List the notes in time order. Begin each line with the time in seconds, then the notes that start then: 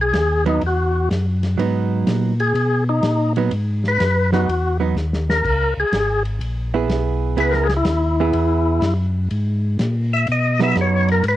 Already playing: B1
0.01 G#4
0.13 D#2, snare, hi-hat pedal, ride
0.46 F#3 B3 D#4, ride
0.61 E2, ride
0.66 F#4
1.11 F#2, snare, hi-hat pedal, ride
1.43 snare, ride
1.58 G#2 F#3 B3 D#4, ride
2.07 A#2, snare, hi-hat pedal, ride
2.40 G#4, ride
2.54 B2, ride
2.89 D#4
3.03 A#2, snare, hi-hat pedal, ride
3.36 F#3 B3 D#4, ride
3.51 G#2, ride
3.84 snare
3.88 B4
4.00 F#2, snare, hi-hat pedal, ride
4.32 F#3 B3 D#4 F#4, snare
4.48 E2, ride
4.80 F#3 B3 D#4
4.95 D#2, snare, hi-hat pedal
5.13 snare
5.30 A#4, snare
5.44 C#2, kick, crash
5.77 C#2 G#4
5.92 G#1, snare, hi-hat pedal, ride
6.25 ride
6.41 A#1, ride
6.74 B3 E4 G#4
6.88 B1, snare, hi-hat pedal, ride
7.36 C#2 B3 E4 G#4 B4, ride
7.51 A#4, snare
7.64 G#4
7.69 snare, ride
7.77 E4
7.85 D#2, snare, hi-hat pedal, ride
8.20 B3 E4 G#4
8.33 E2, ride
8.81 F#2, snare, hi-hat pedal, ride
9.31 G#2, ride
9.79 A#2, snare, hi-hat pedal, ride
10.13 E5
10.27 B2, ride
10.32 D#5
10.59 F#3 B3 D#4, snare
10.63 E5
10.75 F#2, snare, hi-hat pedal, ride
10.81 C#5
11.08 A#4, ride
11.23 G#2, ride
11.28 B4